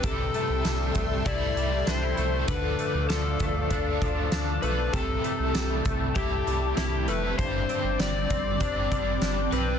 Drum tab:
HH |xxxxxxxx|xxxxxxxx|xxxxxxxx|xxxxxxxx|
TB |--x---x-|--x---x-|--x---x-|--x---x-|
SD |--o---o-|--o---o-|--o---o-|--o---o-|
BD |o--oo---|o--ooo--|o--oo---|o--ooo--|